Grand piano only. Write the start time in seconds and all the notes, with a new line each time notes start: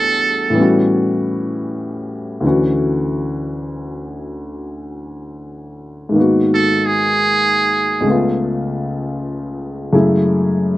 Already playing: E2 E3 G3 A3 D4 F#4
0.50 A2 E3
0.55 G3 B3
0.59 C#4 F#4
2.41 D2 D3 E3
2.45 C#4 F#4
6.09 G#2 D#3
6.15 A#3 B3
6.20 F#4
8.01 C#2 C#3
8.06 A3 B3
8.10 F4
9.93 F#2 C#3 G#3 A3 E4